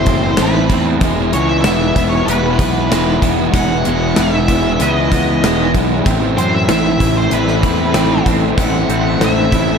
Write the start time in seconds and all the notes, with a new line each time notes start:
Already playing: F#1 A2 E3 A3 E4 C5
0.06 A3 C4 E4, kick, closed hi-hat
0.36 A1 E3 A3 C4 E4, snare, closed hi-hat
0.42 B4
0.68 E2 A3 C4 E4, kick, closed hi-hat
1.01 E1 E3 G#3 B3 E4, kick, closed hi-hat
1.33 C#2 G#3 B3 E4 C#5, closed hi-hat
1.49 E5
1.61 E1 E3 E5, snare, closed hi-hat
1.65 G#3 B3 E4
1.95 E1 G#3 B3 E4, kick, closed hi-hat
2.09 C#5
2.25 E1 E3 G#3 B3 E4 B4, closed hi-hat
2.29 B4
2.59 B1 B3 E4, kick, closed hi-hat
2.63 G#3
2.90 E1 E3 G#3 B3 E4, snare, closed hi-hat
3.22 E1 G#3 B3 E4, kick, closed hi-hat
3.53 E1 E3 G#3 B3 E4 F#5, kick, closed hi-hat
3.85 E1 G#3 B3 E4, closed hi-hat
4.16 E1 E3 G#3 B3 E4 E5, snare, closed hi-hat
4.48 G#3 B3 E4, kick, closed hi-hat
4.80 C#2 E3 G#3 B3 E4 B4 D#5, closed hi-hat
5.12 G#3 B3 E4, kick, closed hi-hat
5.43 E1 E3 G#3 B3 E4, snare, closed hi-hat
5.75 B1 G#3 B3 E4, kick, closed hi-hat
6.06 A1 A2 E3 A3 C4 E4 A4 E5 B5, kick, closed hi-hat
6.37 F#2 C4 E4 C5, closed hi-hat
6.41 A3
6.54 E5
6.69 A1 E3 A3 C4 E4 E5, snare, closed hi-hat
7.00 A1 A3 C4 E4, kick, closed hi-hat
7.17 C5
7.31 A1 A2 E3 A3 B4, closed hi-hat
7.35 C4 E4
7.48 snare
7.63 E2 C4 E4, kick, closed hi-hat
7.67 A3 C4
7.94 A1 E3 A3 C4 E4, snare, closed hi-hat
8.26 A1 C4 E4, kick, closed hi-hat
8.30 A3
8.57 A1 A2 E3 A3 C4 E4 F#5, kick, closed hi-hat
8.89 A1 A3 C4 E4, closed hi-hat
9.20 A1 E3 A3 C4 E4, snare, closed hi-hat
9.24 E5
9.52 A3 C4 E4, kick, closed hi-hat